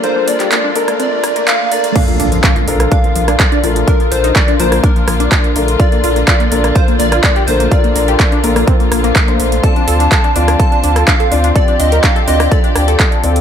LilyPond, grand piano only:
\new Staff \with { instrumentName = "Grand piano" } { \time 4/4 \key bes \major \tempo 4 = 125 <d' a' bes'>4. <d' a' bes'>2 <a d' bes'>8 | d'4. <d' a' bes'>2 <a d' bes'>8 | <d' a' bes'>4. <bes d' bes'>2 <a d' bes'>8 | <d' a' bes'>4. <d' a' bes'>2 <a d' bes'>8 |
<d' a' bes'>4. <d' a' bes'>4.~ <d' a' bes'>16 <a d' c''>8. | <c' f' d''>4. <c' f' d''>2 <c' f' d''>8 | <c' f' d''>4. <c' f' d''>2 <c' f' d''>8 | }